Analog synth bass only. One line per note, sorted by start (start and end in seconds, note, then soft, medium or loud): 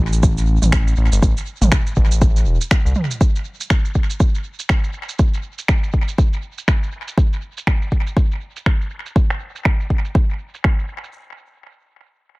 0.00 0.58 A1 loud
0.62 0.94 A1 medium
0.97 1.09 A1 loud
1.12 1.20 G1 loud
1.23 1.34 A1 loud
1.61 1.70 A1 medium
1.97 2.45 A1 loud
2.46 2.58 E1 medium
2.85 2.94 C2 medium